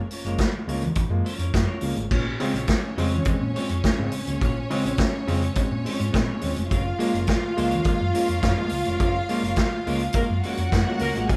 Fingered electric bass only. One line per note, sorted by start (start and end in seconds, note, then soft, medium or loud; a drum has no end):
0.24 0.35 F#1 loud
0.67 0.88 C#2 medium
0.96 muted fingered electric bass stroke soft
1.09 1.20 F#2 loud
1.39 1.49 F2 medium
1.54 1.64 F#2 loud
1.82 1.92 C#2 medium
1.96 2.06 G#1 medium
2.11 2.31 A#1 loud
2.54 2.64 A#1 medium
2.97 3.17 F2 medium
3.26 muted fingered electric bass stroke soft
3.41 3.51 A#2 medium
3.70 3.80 F2 medium
3.98 4.08 G#2 medium
4.28 4.37 C#2 medium
4.42 4.61 A#1 loud
4.85 4.95 A#1 medium
5.28 5.47 F2 loud
5.71 5.81 A#2 medium
6.00 6.10 G#2 medium
6.14 6.24 A#2 loud
6.43 6.52 D#2 medium
6.57 6.67 F1 medium
6.71 6.91 F#1 loud
7.14 7.24 F#1 loud
7.58 7.77 C#2 medium
7.86 muted fingered electric bass stroke soft
8.00 8.10 F#2 medium
8.29 8.39 F2 medium
8.43 8.53 F#2 medium
8.72 8.82 C#2 medium
8.86 8.96 F1 medium
9.00 9.20 F#1 loud
9.43 9.53 F#1 loud
9.87 10.06 C#2 medium
10.14 muted fingered electric bass stroke soft
10.29 10.39 F#2 medium
10.58 10.68 F2 medium
10.72 10.82 F#2 loud
11.00 11.10 C#2 medium
11.15 11.25 G#1 medium
11.30 11.37 A#1 medium